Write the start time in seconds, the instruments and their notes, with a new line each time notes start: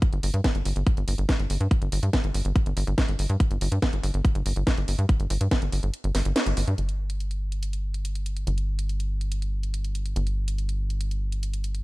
0.02 kick, closed hi-hat
0.13 analog synth bass G1, closed hi-hat
0.23 analog synth bass G1, open hi-hat
0.34 analog synth bass G2, closed hi-hat
0.44 kick, snare, closed hi-hat
0.55 analog synth bass G1, closed hi-hat
0.65 analog synth bass G1, open hi-hat
0.76 analog synth bass G1, closed hi-hat
0.87 kick, closed hi-hat
0.97 analog synth bass G1, closed hi-hat
1.08 analog synth bass G1, open hi-hat
1.18 analog synth bass G1, closed hi-hat
1.29 kick, snare, closed hi-hat
1.39 analog synth bass G1, closed hi-hat
1.50 analog synth bass G1, open hi-hat
1.61 analog synth bass G2, closed hi-hat
1.71 kick, closed hi-hat
1.82 analog synth bass G1, closed hi-hat
1.92 analog synth bass G1, open hi-hat
2.03 analog synth bass G2, closed hi-hat
2.13 kick, snare, closed hi-hat
2.24 analog synth bass G1, closed hi-hat
2.34 analog synth bass G1, open hi-hat
2.45 analog synth bass G1, closed hi-hat
2.56 kick, closed hi-hat
2.66 analog synth bass G1, closed hi-hat
2.77 analog synth bass G1, open hi-hat
2.87 analog synth bass G1, closed hi-hat
2.98 kick, snare, closed hi-hat
3.08 analog synth bass G1, closed hi-hat
3.19 analog synth bass G1, open hi-hat
3.30 analog synth bass G2, closed hi-hat
3.40 kick, closed hi-hat
3.51 analog synth bass G1, closed hi-hat
3.61 analog synth bass G1, open hi-hat
3.72 analog synth bass G2, closed hi-hat
3.82 kick, snare, closed hi-hat
3.93 analog synth bass G1, closed hi-hat
4.03 analog synth bass G1, open hi-hat
4.14 analog synth bass G1, closed hi-hat
4.25 kick, closed hi-hat
4.35 analog synth bass G1, closed hi-hat
4.46 analog synth bass G1, open hi-hat
4.56 analog synth bass G1, closed hi-hat
4.67 kick, snare, closed hi-hat
4.77 analog synth bass G1, closed hi-hat
4.88 analog synth bass G1, open hi-hat
4.99 analog synth bass G2, closed hi-hat
5.09 kick, closed hi-hat
5.20 analog synth bass G1, closed hi-hat
5.30 analog synth bass G1, open hi-hat
5.41 analog synth bass G2, closed hi-hat
5.51 kick, snare, closed hi-hat
5.62 analog synth bass G1, closed hi-hat
5.72 analog synth bass G1, open hi-hat
5.83 analog synth bass G1, closed hi-hat
5.94 closed hi-hat
6.04 analog synth bass G1, closed hi-hat
6.15 analog synth bass G1, snare, open hi-hat
6.25 analog synth bass G1, closed hi-hat
6.36 snare, closed hi-hat
6.46 analog synth bass G1, closed hi-hat
6.57 analog synth bass G1, open hi-hat
6.68 analog synth bass G2, closed hi-hat
6.78 analog synth bass G1, closed hi-hat
6.89 closed hi-hat
7.10 closed hi-hat
7.20 closed hi-hat
7.31 closed hi-hat
7.52 closed hi-hat
7.63 closed hi-hat
7.73 closed hi-hat
7.94 closed hi-hat
8.05 closed hi-hat
8.15 closed hi-hat
8.26 closed hi-hat
8.37 closed hi-hat
8.47 analog synth bass G1, closed hi-hat
8.58 closed hi-hat
8.79 closed hi-hat
8.89 closed hi-hat
9.00 closed hi-hat
9.21 closed hi-hat
9.32 closed hi-hat
9.42 closed hi-hat
9.63 closed hi-hat
9.74 closed hi-hat
9.84 closed hi-hat
9.95 closed hi-hat
10.06 closed hi-hat
10.16 analog synth bass G1, closed hi-hat
10.27 closed hi-hat
10.48 closed hi-hat
10.58 closed hi-hat
10.69 closed hi-hat
10.90 closed hi-hat
11.01 closed hi-hat
11.11 closed hi-hat
11.32 closed hi-hat
11.43 closed hi-hat
11.54 closed hi-hat
11.64 closed hi-hat
11.75 closed hi-hat